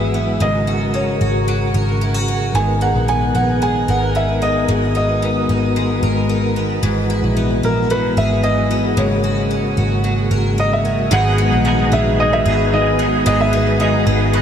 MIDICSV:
0, 0, Header, 1, 6, 480
1, 0, Start_track
1, 0, Key_signature, 5, "minor"
1, 0, Tempo, 535714
1, 362, Time_signature, 4, 2, 24, 8
1, 12919, End_track
2, 0, Start_track
2, 0, Title_t, "Felt piano"
2, 0, Program_c, 0, 0
2, 0, Note_on_c, 0, 76, 92
2, 329, Note_off_c, 0, 76, 0
2, 374, Note_on_c, 0, 75, 82
2, 851, Note_on_c, 0, 73, 66
2, 862, Note_off_c, 0, 75, 0
2, 2010, Note_off_c, 0, 73, 0
2, 2287, Note_on_c, 0, 80, 90
2, 2526, Note_on_c, 0, 78, 82
2, 2531, Note_off_c, 0, 80, 0
2, 2766, Note_on_c, 0, 80, 89
2, 2771, Note_off_c, 0, 78, 0
2, 3004, Note_on_c, 0, 78, 78
2, 3011, Note_off_c, 0, 80, 0
2, 3248, Note_on_c, 0, 80, 93
2, 3250, Note_off_c, 0, 78, 0
2, 3492, Note_off_c, 0, 80, 0
2, 3492, Note_on_c, 0, 78, 79
2, 3728, Note_on_c, 0, 76, 77
2, 3734, Note_off_c, 0, 78, 0
2, 3965, Note_on_c, 0, 75, 81
2, 3972, Note_off_c, 0, 76, 0
2, 4436, Note_off_c, 0, 75, 0
2, 4449, Note_on_c, 0, 75, 71
2, 5130, Note_off_c, 0, 75, 0
2, 6850, Note_on_c, 0, 70, 78
2, 7088, Note_on_c, 0, 71, 84
2, 7093, Note_off_c, 0, 70, 0
2, 7326, Note_on_c, 0, 76, 86
2, 7332, Note_off_c, 0, 71, 0
2, 7557, Note_on_c, 0, 75, 90
2, 7571, Note_off_c, 0, 76, 0
2, 8045, Note_on_c, 0, 73, 74
2, 8054, Note_off_c, 0, 75, 0
2, 9448, Note_off_c, 0, 73, 0
2, 9494, Note_on_c, 0, 75, 84
2, 9611, Note_off_c, 0, 75, 0
2, 9615, Note_on_c, 0, 76, 82
2, 9972, Note_on_c, 0, 78, 109
2, 9979, Note_off_c, 0, 76, 0
2, 10689, Note_on_c, 0, 76, 87
2, 10708, Note_off_c, 0, 78, 0
2, 10909, Note_off_c, 0, 76, 0
2, 10930, Note_on_c, 0, 75, 91
2, 11047, Note_on_c, 0, 76, 108
2, 11049, Note_off_c, 0, 75, 0
2, 11411, Note_on_c, 0, 75, 90
2, 11415, Note_off_c, 0, 76, 0
2, 11876, Note_off_c, 0, 75, 0
2, 11889, Note_on_c, 0, 75, 88
2, 11997, Note_off_c, 0, 75, 0
2, 12012, Note_on_c, 0, 76, 93
2, 12371, Note_on_c, 0, 75, 75
2, 12378, Note_off_c, 0, 76, 0
2, 12919, Note_off_c, 0, 75, 0
2, 12919, End_track
3, 0, Start_track
3, 0, Title_t, "Twelve-string acoustic guitar"
3, 0, Program_c, 1, 25
3, 0, Note_on_c, 1, 44, 77
3, 0, Note_on_c, 1, 54, 62
3, 0, Note_on_c, 1, 59, 57
3, 0, Note_on_c, 1, 64, 49
3, 0, Note_on_c, 1, 68, 56
3, 115, Note_off_c, 1, 59, 0
3, 126, Note_on_c, 1, 59, 53
3, 350, Note_off_c, 1, 44, 0
3, 361, Note_on_c, 1, 44, 72
3, 410, Note_off_c, 1, 64, 0
3, 412, Note_off_c, 1, 59, 0
3, 603, Note_on_c, 1, 66, 54
3, 629, Note_off_c, 1, 68, 0
3, 840, Note_on_c, 1, 61, 55
3, 1073, Note_off_c, 1, 66, 0
3, 1084, Note_on_c, 1, 66, 52
3, 1320, Note_off_c, 1, 54, 0
3, 1323, Note_on_c, 1, 54, 62
3, 1562, Note_on_c, 1, 70, 57
3, 1800, Note_off_c, 1, 66, 0
3, 1804, Note_on_c, 1, 64, 52
3, 1920, Note_off_c, 1, 64, 0
3, 1920, Note_on_c, 1, 66, 49
3, 2032, Note_off_c, 1, 61, 0
3, 2043, Note_on_c, 1, 61, 53
3, 2273, Note_off_c, 1, 44, 0
3, 2283, Note_on_c, 1, 44, 76
3, 2329, Note_off_c, 1, 66, 0
3, 2330, Note_off_c, 1, 54, 0
3, 2330, Note_off_c, 1, 61, 0
3, 2519, Note_on_c, 1, 63, 59
3, 2761, Note_on_c, 1, 59, 54
3, 2788, Note_off_c, 1, 70, 0
3, 2988, Note_off_c, 1, 63, 0
3, 2999, Note_on_c, 1, 63, 53
3, 3241, Note_on_c, 1, 56, 62
3, 3479, Note_on_c, 1, 70, 59
3, 3708, Note_off_c, 1, 63, 0
3, 3719, Note_on_c, 1, 63, 54
3, 3954, Note_off_c, 1, 59, 0
3, 3958, Note_on_c, 1, 59, 53
3, 4186, Note_off_c, 1, 44, 0
3, 4197, Note_on_c, 1, 44, 76
3, 4423, Note_off_c, 1, 63, 0
3, 4434, Note_on_c, 1, 63, 56
3, 4676, Note_off_c, 1, 59, 0
3, 4680, Note_on_c, 1, 59, 56
3, 4910, Note_off_c, 1, 63, 0
3, 4921, Note_on_c, 1, 63, 54
3, 5158, Note_off_c, 1, 56, 0
3, 5162, Note_on_c, 1, 56, 62
3, 5390, Note_off_c, 1, 70, 0
3, 5400, Note_on_c, 1, 70, 59
3, 5629, Note_off_c, 1, 63, 0
3, 5639, Note_on_c, 1, 63, 55
3, 5875, Note_off_c, 1, 59, 0
3, 5879, Note_on_c, 1, 59, 55
3, 6107, Note_off_c, 1, 44, 0
3, 6117, Note_on_c, 1, 44, 82
3, 6169, Note_off_c, 1, 63, 0
3, 6169, Note_off_c, 1, 70, 0
3, 6361, Note_on_c, 1, 64, 59
3, 6596, Note_off_c, 1, 59, 0
3, 6599, Note_on_c, 1, 59, 56
3, 6829, Note_off_c, 1, 64, 0
3, 6839, Note_on_c, 1, 64, 54
3, 7075, Note_off_c, 1, 56, 0
3, 7079, Note_on_c, 1, 54, 61
3, 7321, Note_on_c, 1, 68, 61
3, 7547, Note_off_c, 1, 64, 0
3, 7557, Note_on_c, 1, 64, 55
3, 7790, Note_off_c, 1, 59, 0
3, 7800, Note_on_c, 1, 59, 54
3, 8026, Note_off_c, 1, 44, 0
3, 8037, Note_on_c, 1, 44, 81
3, 8088, Note_off_c, 1, 64, 0
3, 8089, Note_off_c, 1, 59, 0
3, 8276, Note_on_c, 1, 66, 56
3, 8303, Note_off_c, 1, 68, 0
3, 8517, Note_on_c, 1, 61, 54
3, 8751, Note_off_c, 1, 66, 0
3, 8755, Note_on_c, 1, 66, 52
3, 8991, Note_off_c, 1, 54, 0
3, 8995, Note_on_c, 1, 54, 58
3, 9237, Note_on_c, 1, 70, 60
3, 9475, Note_off_c, 1, 66, 0
3, 9479, Note_on_c, 1, 66, 54
3, 9710, Note_off_c, 1, 61, 0
3, 9720, Note_on_c, 1, 61, 53
3, 9943, Note_off_c, 1, 44, 0
3, 9954, Note_on_c, 1, 44, 88
3, 9958, Note_off_c, 1, 70, 0
3, 9962, Note_on_c, 1, 68, 75
3, 10009, Note_off_c, 1, 61, 0
3, 10198, Note_on_c, 1, 59, 68
3, 10433, Note_off_c, 1, 66, 0
3, 10436, Note_on_c, 1, 63, 59
3, 10666, Note_off_c, 1, 59, 0
3, 10677, Note_on_c, 1, 59, 64
3, 11149, Note_off_c, 1, 68, 0
3, 11160, Note_on_c, 1, 68, 65
3, 11187, Note_off_c, 1, 54, 0
3, 11628, Note_off_c, 1, 59, 0
3, 11639, Note_on_c, 1, 59, 63
3, 11869, Note_off_c, 1, 44, 0
3, 11876, Note_off_c, 1, 68, 0
3, 11880, Note_on_c, 1, 44, 93
3, 11886, Note_on_c, 1, 68, 75
3, 12110, Note_off_c, 1, 59, 0
3, 12121, Note_on_c, 1, 59, 70
3, 12359, Note_off_c, 1, 63, 0
3, 12363, Note_on_c, 1, 63, 62
3, 12592, Note_off_c, 1, 59, 0
3, 12603, Note_on_c, 1, 59, 60
3, 12840, Note_off_c, 1, 63, 0
3, 12844, Note_on_c, 1, 63, 64
3, 12919, Note_off_c, 1, 44, 0
3, 12919, Note_off_c, 1, 59, 0
3, 12919, Note_off_c, 1, 63, 0
3, 12919, Note_off_c, 1, 68, 0
3, 12919, End_track
4, 0, Start_track
4, 0, Title_t, "Clean electric guitar"
4, 0, Program_c, 2, 27
4, 9950, Note_on_c, 2, 44, 75
4, 9956, Note_on_c, 2, 51, 76
4, 9963, Note_on_c, 2, 54, 80
4, 9970, Note_on_c, 2, 59, 86
4, 9976, Note_on_c, 2, 63, 86
4, 9978, Note_on_c, 2, 68, 91
4, 10180, Note_off_c, 2, 68, 0
4, 10191, Note_on_c, 2, 68, 56
4, 10196, Note_off_c, 2, 44, 0
4, 10197, Note_off_c, 2, 63, 0
4, 10199, Note_off_c, 2, 51, 0
4, 10202, Note_off_c, 2, 54, 0
4, 10206, Note_off_c, 2, 59, 0
4, 10208, Note_on_c, 2, 63, 53
4, 10219, Note_on_c, 2, 59, 45
4, 10232, Note_on_c, 2, 54, 45
4, 10433, Note_on_c, 2, 44, 78
4, 10434, Note_off_c, 2, 54, 0
4, 10436, Note_off_c, 2, 68, 0
4, 10440, Note_on_c, 2, 51, 72
4, 10441, Note_off_c, 2, 59, 0
4, 10445, Note_off_c, 2, 63, 0
4, 10445, Note_on_c, 2, 54, 77
4, 10452, Note_on_c, 2, 59, 75
4, 10456, Note_on_c, 2, 63, 86
4, 10462, Note_on_c, 2, 68, 84
4, 10659, Note_off_c, 2, 68, 0
4, 10670, Note_on_c, 2, 68, 56
4, 10677, Note_off_c, 2, 44, 0
4, 10677, Note_off_c, 2, 63, 0
4, 10681, Note_off_c, 2, 51, 0
4, 10683, Note_off_c, 2, 54, 0
4, 10687, Note_off_c, 2, 59, 0
4, 10687, Note_on_c, 2, 63, 53
4, 10698, Note_on_c, 2, 59, 46
4, 10713, Note_on_c, 2, 54, 45
4, 10901, Note_off_c, 2, 54, 0
4, 10912, Note_on_c, 2, 54, 59
4, 10916, Note_off_c, 2, 59, 0
4, 10916, Note_off_c, 2, 68, 0
4, 10925, Note_off_c, 2, 63, 0
4, 10927, Note_on_c, 2, 59, 64
4, 10942, Note_on_c, 2, 63, 64
4, 10951, Note_on_c, 2, 68, 68
4, 11141, Note_off_c, 2, 68, 0
4, 11152, Note_on_c, 2, 68, 59
4, 11157, Note_off_c, 2, 54, 0
4, 11159, Note_off_c, 2, 63, 0
4, 11164, Note_off_c, 2, 59, 0
4, 11169, Note_on_c, 2, 63, 52
4, 11180, Note_on_c, 2, 59, 49
4, 11192, Note_on_c, 2, 54, 42
4, 11397, Note_off_c, 2, 68, 0
4, 11397, Note_on_c, 2, 44, 75
4, 11401, Note_off_c, 2, 54, 0
4, 11403, Note_off_c, 2, 59, 0
4, 11406, Note_off_c, 2, 63, 0
4, 11406, Note_on_c, 2, 51, 85
4, 11412, Note_on_c, 2, 54, 78
4, 11414, Note_on_c, 2, 59, 86
4, 11422, Note_on_c, 2, 63, 75
4, 11426, Note_on_c, 2, 68, 81
4, 11623, Note_off_c, 2, 68, 0
4, 11634, Note_on_c, 2, 68, 57
4, 11639, Note_off_c, 2, 44, 0
4, 11639, Note_off_c, 2, 63, 0
4, 11644, Note_off_c, 2, 51, 0
4, 11647, Note_off_c, 2, 54, 0
4, 11648, Note_off_c, 2, 59, 0
4, 11650, Note_on_c, 2, 63, 52
4, 11662, Note_on_c, 2, 59, 52
4, 11675, Note_on_c, 2, 54, 44
4, 11878, Note_off_c, 2, 68, 0
4, 11880, Note_on_c, 2, 44, 76
4, 11882, Note_off_c, 2, 54, 0
4, 11886, Note_off_c, 2, 59, 0
4, 11886, Note_off_c, 2, 63, 0
4, 11887, Note_on_c, 2, 51, 73
4, 11893, Note_on_c, 2, 54, 80
4, 11897, Note_on_c, 2, 59, 81
4, 11905, Note_on_c, 2, 63, 91
4, 11909, Note_on_c, 2, 68, 86
4, 12100, Note_off_c, 2, 68, 0
4, 12111, Note_on_c, 2, 68, 55
4, 12115, Note_off_c, 2, 63, 0
4, 12121, Note_off_c, 2, 44, 0
4, 12124, Note_off_c, 2, 51, 0
4, 12126, Note_on_c, 2, 63, 52
4, 12127, Note_off_c, 2, 54, 0
4, 12129, Note_off_c, 2, 59, 0
4, 12141, Note_on_c, 2, 59, 51
4, 12152, Note_on_c, 2, 54, 49
4, 12356, Note_off_c, 2, 68, 0
4, 12359, Note_on_c, 2, 44, 82
4, 12364, Note_off_c, 2, 54, 0
4, 12364, Note_off_c, 2, 63, 0
4, 12367, Note_off_c, 2, 59, 0
4, 12367, Note_on_c, 2, 51, 80
4, 12374, Note_on_c, 2, 54, 77
4, 12377, Note_on_c, 2, 59, 84
4, 12383, Note_on_c, 2, 63, 83
4, 12388, Note_on_c, 2, 68, 88
4, 12588, Note_off_c, 2, 68, 0
4, 12599, Note_on_c, 2, 68, 55
4, 12600, Note_off_c, 2, 44, 0
4, 12604, Note_off_c, 2, 51, 0
4, 12604, Note_off_c, 2, 63, 0
4, 12608, Note_off_c, 2, 54, 0
4, 12610, Note_off_c, 2, 59, 0
4, 12614, Note_on_c, 2, 63, 53
4, 12627, Note_on_c, 2, 59, 49
4, 12639, Note_on_c, 2, 54, 51
4, 12827, Note_off_c, 2, 54, 0
4, 12838, Note_on_c, 2, 54, 59
4, 12840, Note_off_c, 2, 59, 0
4, 12840, Note_off_c, 2, 68, 0
4, 12848, Note_off_c, 2, 63, 0
4, 12850, Note_on_c, 2, 59, 64
4, 12864, Note_on_c, 2, 63, 73
4, 12878, Note_on_c, 2, 68, 72
4, 12919, Note_off_c, 2, 54, 0
4, 12919, Note_off_c, 2, 59, 0
4, 12919, Note_off_c, 2, 63, 0
4, 12919, Note_off_c, 2, 68, 0
4, 12919, End_track
5, 0, Start_track
5, 0, Title_t, "Tonewheel organ"
5, 0, Program_c, 3, 16
5, 0, Note_on_c, 3, 52, 59
5, 0, Note_on_c, 3, 56, 56
5, 0, Note_on_c, 3, 59, 54
5, 0, Note_on_c, 3, 66, 68
5, 347, Note_off_c, 3, 52, 0
5, 349, Note_off_c, 3, 59, 0
5, 366, Note_on_c, 3, 49, 60
5, 367, Note_on_c, 3, 70, 55
5, 2251, Note_off_c, 3, 56, 0
5, 2251, Note_off_c, 3, 66, 0
5, 2265, Note_off_c, 3, 49, 0
5, 2287, Note_on_c, 3, 59, 54
5, 2289, Note_on_c, 3, 51, 61
5, 2292, Note_on_c, 3, 68, 68
5, 4188, Note_off_c, 3, 68, 0
5, 4195, Note_on_c, 3, 66, 67
5, 6089, Note_off_c, 3, 70, 0
5, 6090, Note_off_c, 3, 51, 0
5, 6119, Note_on_c, 3, 56, 59
5, 6124, Note_on_c, 3, 52, 64
5, 8002, Note_off_c, 3, 66, 0
5, 8009, Note_off_c, 3, 59, 0
5, 8021, Note_off_c, 3, 56, 0
5, 8024, Note_off_c, 3, 52, 0
5, 8041, Note_on_c, 3, 66, 66
5, 8042, Note_on_c, 3, 49, 58
5, 8042, Note_on_c, 3, 56, 56
5, 8042, Note_on_c, 3, 58, 57
5, 9942, Note_off_c, 3, 49, 0
5, 9942, Note_off_c, 3, 58, 0
5, 9942, Note_off_c, 3, 66, 0
5, 9943, Note_off_c, 3, 56, 0
5, 9968, Note_on_c, 3, 51, 69
5, 9968, Note_on_c, 3, 59, 63
5, 9968, Note_on_c, 3, 66, 77
5, 9969, Note_on_c, 3, 56, 61
5, 12919, Note_off_c, 3, 51, 0
5, 12919, Note_off_c, 3, 56, 0
5, 12919, Note_off_c, 3, 59, 0
5, 12919, Note_off_c, 3, 66, 0
5, 12919, End_track
6, 0, Start_track
6, 0, Title_t, "Picked electric bass"
6, 0, Program_c, 4, 34
6, 0, Note_on_c, 4, 32, 78
6, 325, Note_off_c, 4, 32, 0
6, 360, Note_on_c, 4, 32, 85
6, 1045, Note_off_c, 4, 32, 0
6, 1080, Note_on_c, 4, 32, 87
6, 1537, Note_off_c, 4, 32, 0
6, 1558, Note_on_c, 4, 32, 82
6, 2244, Note_off_c, 4, 32, 0
6, 2277, Note_on_c, 4, 32, 96
6, 2621, Note_off_c, 4, 32, 0
6, 2637, Note_on_c, 4, 34, 81
6, 2981, Note_off_c, 4, 34, 0
6, 2997, Note_on_c, 4, 34, 83
6, 3455, Note_off_c, 4, 34, 0
6, 3477, Note_on_c, 4, 32, 80
6, 4164, Note_off_c, 4, 32, 0
6, 4195, Note_on_c, 4, 32, 84
6, 4883, Note_off_c, 4, 32, 0
6, 4917, Note_on_c, 4, 32, 82
6, 5375, Note_off_c, 4, 32, 0
6, 5398, Note_on_c, 4, 32, 78
6, 6084, Note_off_c, 4, 32, 0
6, 6116, Note_on_c, 4, 32, 90
6, 6461, Note_off_c, 4, 32, 0
6, 6475, Note_on_c, 4, 34, 76
6, 6820, Note_off_c, 4, 34, 0
6, 6836, Note_on_c, 4, 34, 73
6, 7295, Note_off_c, 4, 34, 0
6, 7317, Note_on_c, 4, 32, 75
6, 8004, Note_off_c, 4, 32, 0
6, 8035, Note_on_c, 4, 32, 92
6, 8723, Note_off_c, 4, 32, 0
6, 8757, Note_on_c, 4, 32, 89
6, 9215, Note_off_c, 4, 32, 0
6, 9236, Note_on_c, 4, 32, 82
6, 9923, Note_off_c, 4, 32, 0
6, 9957, Note_on_c, 4, 32, 104
6, 10301, Note_off_c, 4, 32, 0
6, 10319, Note_on_c, 4, 34, 85
6, 10662, Note_off_c, 4, 34, 0
6, 10678, Note_on_c, 4, 34, 99
6, 11136, Note_off_c, 4, 34, 0
6, 11159, Note_on_c, 4, 32, 93
6, 11844, Note_off_c, 4, 32, 0
6, 11882, Note_on_c, 4, 32, 108
6, 12566, Note_off_c, 4, 32, 0
6, 12602, Note_on_c, 4, 32, 100
6, 12919, Note_off_c, 4, 32, 0
6, 12919, End_track
0, 0, End_of_file